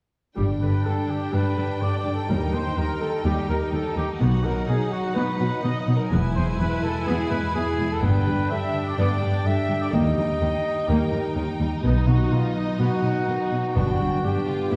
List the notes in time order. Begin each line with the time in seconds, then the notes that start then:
0.37 G1 G2 G3 D4 G4 G5
0.61 G2 D3 B4
0.85 G2 D3 D4 A4
1.09 D3 G4
1.33 G2 G3 D4 B4
1.57 G2 D3 G3
1.81 G2 D3 G3 D4 D5
1.98 D5
2.05 G2 D3
2.14 A4
2.29 D#2 D#3 G3 D#4 A#4
2.53 D#2 D#3 G3 C5
2.77 D#2 D#3 G3 D#4 G4 A#4
3.01 G3 A4
3.25 D#2 D#3 G3 D#4 G4
3.48 D#2 D#3 D#4 A#4
3.73 D#2 D#3 G4 A4
3.95 D#2 D#3 G3 G4
4.20 B1 B2 F#3 B3 D#4 F#4 F#5
4.44 B2 F#3 A#4
4.68 B2 D#3 D#4 G#4
4.92 F#3 F#4
5.15 B2 F#3 B3 D#4 B4
5.40 B2 F#3 B3
5.63 B2 D#3 F#3 D#4 D#5
5.80 D#5
5.87 B2 F#3
5.96 A#4
6.11 E1 E2 G#3 B3 E4 B4 G#5
6.35 E2 B2 G#3 C5
6.58 E2 E3 G#3 E4 B4
6.82 B2 A4
7.06 E2 G#3 B3 E4 G#4
7.30 E2 G#3 B3 B4
7.53 E2 E3 G#3 E4 G#4
7.78 E2 B2 G#3
7.92 A4
8.01 G1 G2 G3 B3 D4 B4 G5
8.25 G2 D3 G3
8.49 G2 D3 D4 E5
8.73 D3
8.87 D5
8.97 G2 G3 B3 D4 D5
9.21 G2 G3 B3
9.44 G2 D3 D4 E5
9.68 G2 D3 G3
9.82 D5
9.92 D#2 D#3 G3 A#3 D#4 D#5
10.16 D#2 G3 A#3
10.40 D#2 D#3 G4
10.63 A#3
10.87 D#2 D#3 G3 A#3 D#4 A#4
11.11 D#2 G3 D#4
11.35 D#2 D#3 G4
11.58 D#2 G3 A#3
11.82 B1 B2 B3 D#4 D#5
12.07 B2 F#3 F#4
12.31 B2 D#3 D#4 F4
12.55 F#3 D#4
12.78 B2 B3 D#4 F#4
13.03 B2 F#3 B3
13.27 B2 D#3 D#4
13.51 B2 F#3
13.75 G1 G2 B3 D4 F#4 G5
13.99 G2 D3 G3
14.23 G2 D3 B3 D4 G4
14.47 D3 F4
14.72 G2 B3 E4